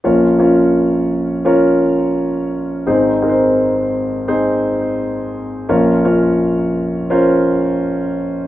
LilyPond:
<<
  \new Staff \with { instrumentName = "Grand piano" } { \time 4/4 \key bes \minor \tempo 4 = 85 <des' f' bes' des''>8 <des' f' bes' des''>4 r8 <des' f' bes' des''>4. r8 | <c' ees' aes' c''>8 <c' ees' aes' bes' c''>4 r8 <c' ees' aes' c''>4. r8 | <des' f' bes' des''>8 <des' f' bes' des''>4 r8 <des' f' bes' c''>4. r8 | }
  \new Staff \with { instrumentName = "Grand piano" } { \clef bass \time 4/4 \key bes \minor <bes,, bes,>1 | <aes,, aes,>1 | <bes,, bes,>1 | }
>>